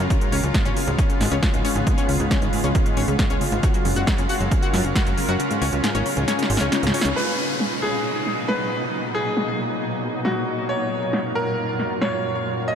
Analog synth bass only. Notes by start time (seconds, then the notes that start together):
0.32 C#2
0.43 C#2
0.65 G#1
0.87 C#2
1.21 G#1
1.32 C#2
1.54 C#2
1.76 G#1
2.09 C#2
2.20 C#2
2.42 G#1
2.64 C#2
2.97 G#1
3.08 C#2
3.30 C#2
3.52 G#1
3.85 F#1
3.96 F#1
4.18 F#2
4.40 F#1
4.73 F#2
4.85 F#1
5.07 F#1
5.29 F#2
5.62 C#2
5.73 C#2
5.95 G#1
6.17 C#2
6.50 G#1
6.61 C#2
6.83 C#2
7.05 C#2